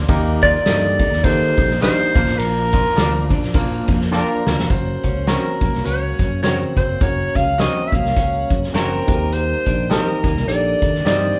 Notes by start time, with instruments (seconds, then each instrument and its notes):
Already playing: tonewheel organ A#3, tine electric piano D5
0.08 fingered electric bass D#2, tine electric piano D#3 A#3 D#4 G4 A#4, tonewheel organ G3 D#4, kick, hi-hat pedal, ride, tambourine
0.42 clean electric guitar F4, alto saxophone D5, kick, ride
0.66 fingered electric bass G2, tine electric piano A#3 D#4 G4 A4, clean electric guitar G4 A#4 D#5, snare, ride, tambourine
0.99 clean electric guitar D#4, kick, ride
1.12 fingered electric bass D#2, snare
1.23 fingered electric bass D#3, tine electric piano A#3 D#4 G4 A4, clean electric guitar A#3, alto saxophone C5, kick, ride, tambourine
1.57 fingered electric bass A#1, kick, ride
1.71 snare
1.81 tine electric piano A#3 D#4 G4 C5, clean electric guitar D4 G4 A#4 D#5, alto saxophone C5, snare, ride, tambourine
1.99 ride
2.14 fingered electric bass A#1, tine electric piano A#2 A#3 D4 F4 A#4, tonewheel organ F3 D4, clean electric guitar A#3, kick, ride
2.27 fingered electric bass A1, snare, ride
2.38 fingered electric bass A#1, alto saxophone A#4, ride, tambourine
2.73 clean electric guitar F4, kick, ride
2.96 fingered electric bass D2, tine electric piano A#3 D4 F4 A#4, clean electric guitar F4 A#4 D5, snare, ride, tambourine
3.30 clean electric guitar D4, kick, ride
3.42 fingered electric bass A#1, snare
3.54 fingered electric bass A#2, tine electric piano A#3 D4 F4 A#4, clean electric guitar A#3, kick, ride, tambourine
3.88 fingered electric bass F2, kick, ride
4.01 snare
4.11 tine electric piano A#3 D4 F4 A#4 G5, clean electric guitar D4 F4 A#4 D5, alto saxophone A#4, snare, tambourine
4.29 tine electric piano F5
4.46 fingered electric bass D2, clean electric guitar A#3, snare
4.57 fingered electric bass F1, snare
4.70 fingered electric bass F#1, tonewheel organ C#3 F#3 A#3, tine electric piano C#4 F#4 A#4, alto saxophone C5, kick, closed hi-hat, tambourine
5.03 fingered electric bass C#2, clean electric guitar C#4, kick, closed hi-hat
5.27 clean electric guitar C4 F#4 A#4 C#5, tine electric piano C#4 F#4 A#4, alto saxophone A#4, snare, closed hi-hat, tambourine
5.61 fingered electric bass A#1, clean electric guitar A#3, kick, closed hi-hat
5.73 fingered electric bass C2, snare
5.84 fingered electric bass C#2, tine electric piano C#4 F#4 C#5, clean electric guitar C#4, alto saxophone C#5, closed hi-hat, tambourine
6.19 fingered electric bass F#2, kick, closed hi-hat
6.43 tine electric piano C#3 F#4 A#4, clean electric guitar C4 F#4 A#4 C#5, alto saxophone C#5, snare, closed hi-hat, tambourine
6.77 fingered electric bass F#1, alto saxophone C5, kick, closed hi-hat
7.01 fingered electric bass F#1, tine electric piano C#4 F#4 A#4, alto saxophone C#5, kick, closed hi-hat, tambourine
7.35 fingered electric bass C#2, clean electric guitar C#4, alto saxophone F5, kick, closed hi-hat
7.58 clean electric guitar C4 F#4 A#4 C#5, tine electric piano C#4 F#4 A#4, alto saxophone D#5, snare, closed hi-hat, tambourine
7.87 alto saxophone E5
7.92 fingered electric bass A#1, clean electric guitar A#3, alto saxophone F5, kick, closed hi-hat
8.04 fingered electric bass C2, snare
8.16 fingered electric bass C#2, tine electric piano C#4 F#4 C#5, clean electric guitar C#4, kick, closed hi-hat, tambourine
8.50 fingered electric bass F#2, kick, closed hi-hat
8.63 snare
8.73 fingered electric bass F#1, clean electric guitar C4 F#4 A#4 C#5, tine electric piano C#4 F#4 C5, alto saxophone A#4, snare, closed hi-hat, tambourine
9.07 fingered electric bass D#2, tine electric piano D#3 D#4 G4 A4, tonewheel organ D#3 G3, kick, closed hi-hat
9.14 tine electric piano A#4
9.32 alto saxophone C5, closed hi-hat, tambourine
9.66 fingered electric bass A#1, clean electric guitar D4, kick, closed hi-hat
9.90 clean electric guitar C4 G4 A#4 D#5, tine electric piano D#4 G4 A#4, alto saxophone A#4, snare, closed hi-hat, tambourine
10.24 fingered electric bass D#2, clean electric guitar A#3, kick, closed hi-hat
10.36 fingered electric bass C2, snare
10.47 fingered electric bass A#1, tine electric piano D#3 G4 A4, clean electric guitar D4, alto saxophone D5, closed hi-hat, tambourine
10.82 fingered electric bass D#3, kick, closed hi-hat
10.95 snare
11.05 fingered electric bass G2, clean electric guitar C4 G4 A#4 D#5, tine electric piano D#4 G4 C5, alto saxophone D5, snare, closed hi-hat, tambourine